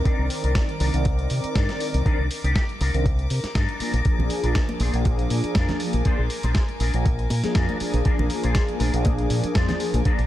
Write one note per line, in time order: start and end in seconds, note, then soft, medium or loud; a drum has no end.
0.00 0.90 D#3 medium
0.00 3.76 A#4 medium
0.00 10.27 D6 medium
0.04 0.90 C4 medium
0.04 0.24 D4 loud
0.04 0.24 D#4 medium
0.04 0.24 A#4 loud
0.04 0.91 A#4 medium
0.04 0.91 D5 medium
0.04 kick loud
0.04 closed hi-hat medium
0.19 0.27 C2 medium
0.30 open hi-hat loud
0.43 0.52 C2 medium
0.43 0.62 D4 medium
0.43 0.62 D#4 medium
0.43 0.62 A#4 medium
0.43 closed hi-hat soft
0.55 kick loud
0.55 snare loud
0.55 closed hi-hat medium
0.69 closed hi-hat soft
0.80 0.90 C2 loud
0.80 0.94 D4 medium
0.80 0.94 D#4 medium
0.80 0.94 A#4 loud
0.80 open hi-hat loud
0.93 1.26 C2 loud
0.93 2.02 D#3 medium
0.93 2.02 C4 medium
0.93 2.03 A#4 medium
0.93 2.03 D5 medium
0.93 closed hi-hat soft
1.05 muted clean electric guitar stroke loud
1.05 kick loud
1.05 closed hi-hat medium
1.19 muted clean electric guitar stroke soft
1.19 closed hi-hat soft
1.30 1.41 C3 medium
1.30 open hi-hat loud
1.44 muted fingered electric bass stroke soft
1.44 closed hi-hat soft
1.55 1.66 G2 medium
1.55 1.80 D4 medium
1.55 1.81 D#4 medium
1.55 1.81 A#4 medium
1.55 kick loud
1.55 snare loud
1.55 closed hi-hat medium
1.69 snare soft
1.69 closed hi-hat soft
1.80 open hi-hat loud
1.94 2.03 C2 medium
1.94 closed hi-hat soft
2.05 2.19 D#3 loud
2.05 2.19 C4 medium
2.05 2.24 D4 loud
2.05 2.19 D4 medium
2.05 2.25 D#4 medium
2.05 2.25 A#4 loud
2.05 2.19 A#4 loud
2.05 kick loud
2.05 closed hi-hat medium
2.19 2.27 C2 medium
2.31 open hi-hat loud
2.44 2.52 C2 medium
2.44 2.62 D4 medium
2.44 2.62 D#4 medium
2.44 2.62 G4 loud
2.44 closed hi-hat soft
2.55 kick loud
2.55 snare loud
2.55 closed hi-hat medium
2.69 closed hi-hat soft
2.80 2.91 C2 loud
2.80 2.94 D4 medium
2.80 2.94 D#4 medium
2.80 2.94 A#4 medium
2.80 open hi-hat loud
2.93 3.26 C2 medium
2.93 3.05 D#3 medium
2.93 3.05 C4 medium
2.93 3.05 D4 medium
2.93 3.06 A#4 loud
2.93 closed hi-hat soft
3.05 muted clean electric guitar stroke loud
3.05 kick loud
3.05 closed hi-hat medium
3.19 muted clean electric guitar stroke soft
3.19 closed hi-hat soft
3.30 3.41 C3 medium
3.30 open hi-hat loud
3.44 muted fingered electric bass stroke soft
3.44 snare soft
3.44 closed hi-hat soft
3.55 3.65 G2 medium
3.55 3.79 D4 medium
3.55 3.80 D#4 medium
3.55 3.80 A#4 medium
3.55 kick loud
3.55 snare loud
3.55 closed hi-hat medium
3.69 closed hi-hat soft
3.80 3.94 F3 medium
3.80 3.94 A#3 medium
3.80 4.30 D4 medium
3.80 3.94 D4 medium
3.80 4.30 G#4 medium
3.80 10.27 A#4 medium
3.80 4.31 A#4 loud
3.80 3.94 A#4 medium
3.80 10.27 G#5 medium
3.80 muted fingered electric bass stroke soft
3.80 open hi-hat loud
3.94 4.02 A#1 medium
3.94 closed hi-hat medium
4.05 4.91 F3 medium
4.05 4.91 A#3 medium
4.05 4.91 D4 medium
4.05 4.92 G#4 medium
4.05 kick loud
4.05 closed hi-hat medium
4.19 4.27 A#1 medium
4.19 muted conga soft
4.19 low conga medium
4.30 open hi-hat loud
4.44 4.52 A#1 medium
4.44 4.62 D4 medium
4.44 4.62 G#4 medium
4.44 4.62 A#4 medium
4.44 closed hi-hat soft
4.55 kick loud
4.55 snare loud
4.55 closed hi-hat medium
4.69 closed hi-hat soft
4.69 muted conga medium
4.80 4.90 A#1 loud
4.80 4.94 D4 medium
4.80 4.94 G#4 medium
4.80 4.94 C5 loud
4.80 open hi-hat loud
4.80 high conga medium
4.93 5.26 A#1 loud
4.93 6.02 F3 medium
4.93 6.02 A#3 medium
4.93 6.03 D4 medium
4.93 6.03 G#4 medium
4.93 closed hi-hat soft
5.05 muted clean electric guitar stroke loud
5.05 kick loud
5.05 closed hi-hat medium
5.05 muted conga medium
5.19 muted clean electric guitar stroke soft
5.19 closed hi-hat soft
5.30 5.40 A#2 medium
5.30 open hi-hat loud
5.44 muted fingered electric bass stroke soft
5.44 closed hi-hat soft
5.55 5.66 F2 medium
5.55 5.80 D4 medium
5.55 5.81 G#4 medium
5.55 5.81 A#4 medium
5.55 kick loud
5.55 snare loud
5.55 closed hi-hat medium
5.55 muted conga medium
5.69 snare soft
5.69 closed hi-hat soft
5.69 high conga medium
5.69 low conga medium
5.80 open hi-hat loud
5.93 6.02 A#1 medium
5.93 closed hi-hat medium
5.93 muted conga soft
5.93 high conga medium
6.05 6.19 F3 loud
6.05 6.19 A#3 medium
6.05 6.25 D4 loud
6.05 6.19 D4 medium
6.05 6.25 G#4 medium
6.05 6.19 G#4 loud
6.05 6.25 C5 loud
6.05 kick loud
6.05 closed hi-hat medium
6.19 6.27 A#1 medium
6.30 open hi-hat loud
6.43 6.52 A#1 medium
6.43 6.62 D4 medium
6.43 6.62 G#4 medium
6.43 6.62 C5 medium
6.43 closed hi-hat soft
6.43 muted conga medium
6.55 kick loud
6.55 snare loud
6.55 closed hi-hat medium
6.69 closed hi-hat soft
6.80 6.90 A#1 loud
6.80 6.94 D4 medium
6.80 6.94 G#4 medium
6.80 6.94 A#4 loud
6.80 open hi-hat loud
6.80 muted conga soft
6.94 7.26 A#1 loud
6.94 7.05 F3 medium
6.94 7.05 A#3 medium
6.94 7.06 D4 medium
6.94 7.06 G#4 loud
6.94 closed hi-hat medium
7.05 muted clean electric guitar stroke loud
7.05 kick loud
7.05 closed hi-hat medium
7.19 muted clean electric guitar stroke soft
7.19 closed hi-hat soft
7.30 7.41 A#2 medium
7.30 open hi-hat loud
7.30 muted conga medium
7.43 7.77 F3 loud
7.43 7.78 A#3 medium
7.43 7.78 D4 medium
7.43 7.78 G#4 loud
7.43 muted fingered electric bass stroke soft
7.43 snare soft
7.43 closed hi-hat medium
7.55 7.66 F2 medium
7.55 7.80 D4 medium
7.55 7.80 G#4 medium
7.55 7.81 A#4 medium
7.55 kick loud
7.55 snare loud
7.55 closed hi-hat medium
7.69 closed hi-hat soft
7.69 muted conga soft
7.69 high conga medium
7.80 8.02 F3 medium
7.80 8.03 A#3 medium
7.80 8.03 D4 medium
7.80 8.03 G#4 medium
7.80 muted fingered electric bass stroke soft
7.80 open hi-hat loud
7.94 8.02 A#1 medium
7.94 closed hi-hat medium
8.04 8.90 F3 medium
8.04 8.91 A#3 medium
8.04 8.24 D4 loud
8.04 8.91 D4 medium
8.04 8.24 G#4 medium
8.04 8.91 G#4 medium
8.04 8.24 A#4 loud
8.04 kick loud
8.04 closed hi-hat medium
8.19 8.27 A#1 loud
8.19 muted conga medium
8.19 low conga medium
8.30 open hi-hat loud
8.44 8.53 A#1 medium
8.44 8.62 D4 medium
8.44 8.62 G#4 medium
8.44 8.62 C5 medium
8.44 closed hi-hat medium
8.55 kick loud
8.55 snare loud
8.55 closed hi-hat medium
8.55 muted conga medium
8.68 closed hi-hat soft
8.80 8.90 A#1 loud
8.80 8.94 D4 medium
8.80 8.94 G#4 medium
8.80 8.94 A#4 loud
8.80 open hi-hat loud
8.80 high conga medium
8.93 9.26 A#1 loud
8.93 10.02 F3 medium
8.93 10.03 A#3 medium
8.93 10.03 D4 medium
8.93 10.03 G#4 loud
8.93 closed hi-hat medium
9.05 muted clean electric guitar stroke loud
9.05 kick loud
9.05 closed hi-hat medium
9.05 muted conga medium
9.19 muted clean electric guitar stroke soft
9.19 closed hi-hat soft
9.30 9.40 A#2 medium
9.30 open hi-hat loud
9.44 muted fingered electric bass stroke soft
9.44 closed hi-hat medium
9.44 muted conga soft
9.55 9.66 F2 medium
9.55 9.80 D4 medium
9.55 9.80 G#4 medium
9.55 9.81 C5 medium
9.55 kick loud
9.55 snare loud
9.55 closed hi-hat medium
9.69 snare soft
9.69 closed hi-hat soft
9.69 high conga medium
9.69 low conga medium
9.80 open hi-hat loud
9.94 10.02 A#1 loud
9.94 closed hi-hat medium
9.94 muted conga medium
9.94 high conga medium
10.05 10.19 F3 loud
10.05 10.19 A#3 medium
10.05 10.25 D4 loud
10.05 10.19 D4 medium
10.05 10.25 G#4 medium
10.05 10.19 G#4 loud
10.05 10.25 A#4 loud
10.05 kick loud
10.05 closed hi-hat medium
10.19 10.27 A#1 loud
10.19 closed hi-hat soft